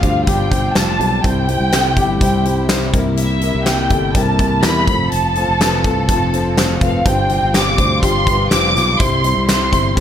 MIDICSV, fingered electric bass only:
0, 0, Header, 1, 2, 480
1, 0, Start_track
1, 0, Tempo, 484653
1, 1233, Time_signature, 4, 2, 24, 8
1, 9906, End_track
2, 0, Start_track
2, 0, Title_t, "Fingered electric bass"
2, 0, Program_c, 0, 33
2, 32, Note_on_c, 0, 38, 70
2, 256, Note_off_c, 0, 38, 0
2, 273, Note_on_c, 0, 31, 78
2, 720, Note_off_c, 0, 31, 0
2, 750, Note_on_c, 0, 29, 70
2, 975, Note_off_c, 0, 29, 0
2, 986, Note_on_c, 0, 35, 80
2, 1213, Note_off_c, 0, 35, 0
2, 1233, Note_on_c, 0, 36, 77
2, 1568, Note_off_c, 0, 36, 0
2, 1589, Note_on_c, 0, 36, 81
2, 1926, Note_off_c, 0, 36, 0
2, 1949, Note_on_c, 0, 31, 70
2, 2191, Note_off_c, 0, 31, 0
2, 2191, Note_on_c, 0, 36, 85
2, 2877, Note_off_c, 0, 36, 0
2, 2911, Note_on_c, 0, 36, 82
2, 3473, Note_off_c, 0, 36, 0
2, 3514, Note_on_c, 0, 36, 82
2, 3849, Note_off_c, 0, 36, 0
2, 3868, Note_on_c, 0, 31, 71
2, 4095, Note_off_c, 0, 31, 0
2, 4109, Note_on_c, 0, 36, 88
2, 4558, Note_off_c, 0, 36, 0
2, 4597, Note_on_c, 0, 40, 73
2, 4819, Note_off_c, 0, 40, 0
2, 4830, Note_on_c, 0, 29, 81
2, 5056, Note_off_c, 0, 29, 0
2, 5074, Note_on_c, 0, 29, 81
2, 5409, Note_off_c, 0, 29, 0
2, 5432, Note_on_c, 0, 29, 81
2, 5768, Note_off_c, 0, 29, 0
2, 5792, Note_on_c, 0, 36, 70
2, 6016, Note_off_c, 0, 36, 0
2, 6031, Note_on_c, 0, 29, 89
2, 6717, Note_off_c, 0, 29, 0
2, 6747, Note_on_c, 0, 29, 76
2, 6974, Note_off_c, 0, 29, 0
2, 6993, Note_on_c, 0, 31, 89
2, 7328, Note_off_c, 0, 31, 0
2, 7359, Note_on_c, 0, 31, 84
2, 7691, Note_off_c, 0, 31, 0
2, 7713, Note_on_c, 0, 38, 76
2, 7937, Note_off_c, 0, 38, 0
2, 7952, Note_on_c, 0, 31, 90
2, 8399, Note_off_c, 0, 31, 0
2, 8439, Note_on_c, 0, 29, 76
2, 8660, Note_off_c, 0, 29, 0
2, 8680, Note_on_c, 0, 35, 85
2, 8900, Note_off_c, 0, 35, 0
2, 8916, Note_on_c, 0, 36, 83
2, 9249, Note_off_c, 0, 36, 0
2, 9284, Note_on_c, 0, 36, 77
2, 9614, Note_off_c, 0, 36, 0
2, 9636, Note_on_c, 0, 31, 72
2, 9892, Note_off_c, 0, 31, 0
2, 9906, End_track
0, 0, End_of_file